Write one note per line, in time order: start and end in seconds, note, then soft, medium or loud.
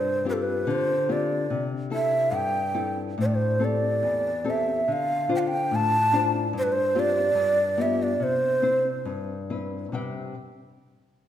0.00 0.64 G2 medium
0.00 0.27 C5 medium
0.25 0.91 C4 medium
0.25 0.92 F4 soft
0.25 0.92 G4 medium
0.25 0.35 B4 medium
0.33 0.44 A4 medium
0.42 0.72 B4 medium
0.67 1.47 D3 medium
0.67 1.13 C5 medium
1.09 1.41 C4 medium
1.09 1.41 F4 soft
1.09 1.42 G4 medium
1.09 1.66 D5 medium
1.50 2.30 C3 medium
1.90 2.57 C4 soft
1.90 2.58 E4 soft
1.90 2.58 A4 soft
1.90 2.37 E5 medium
2.31 3.15 G2 medium
2.36 2.98 G5 medium
2.74 3.09 C4 soft
2.74 3.09 E4 soft
2.74 3.09 A4 soft
3.18 4.02 A2 medium
3.18 3.27 C5 medium
3.26 3.36 D5 medium
3.35 3.66 C5 medium
3.60 4.29 C4 medium
3.60 4.29 G4 soft
3.60 4.29 A4 soft
3.65 4.52 D5 loud
4.03 4.85 E2 medium
4.44 4.79 C4 medium
4.44 4.79 G4 soft
4.44 4.79 A4 medium
4.50 4.94 E5 medium
4.88 5.69 D3 medium
4.93 5.32 F5 loud
5.29 5.96 D4 medium
5.29 5.96 F4 medium
5.29 5.97 C5 medium
5.35 5.49 F5 medium
5.35 5.40 G5 medium
5.47 5.77 G5 loud
5.71 6.52 A2 medium
5.75 6.36 A5 loud
6.13 6.46 D4 medium
6.13 6.47 F4 medium
6.13 6.47 C5 medium
6.53 7.34 G2 medium
6.58 6.65 C5 loud
6.63 6.74 B4 medium
6.72 7.01 C5 loud
6.95 7.28 C4 medium
6.95 7.28 F4 medium
6.95 7.29 G4 medium
6.99 7.83 D5 loud
7.35 8.16 G2 medium
7.77 8.11 B3 medium
7.77 8.11 F4 medium
7.77 8.11 G4 medium
7.81 8.04 E5 medium
8.03 8.25 D5 medium
8.20 9.03 C3 medium
8.20 9.07 C5 loud
8.62 9.32 C4 medium
8.62 9.33 E4 soft
8.62 9.33 C5 medium
9.05 9.91 G2 medium
9.50 9.85 C4 soft
9.50 9.85 E4 soft
9.50 9.85 B4 medium
9.92 10.33 C3 soft
9.92 10.34 G3 soft
9.92 10.34 C4 soft
9.92 10.34 B4 soft
9.92 10.34 E5 soft
9.92 10.35 G5 medium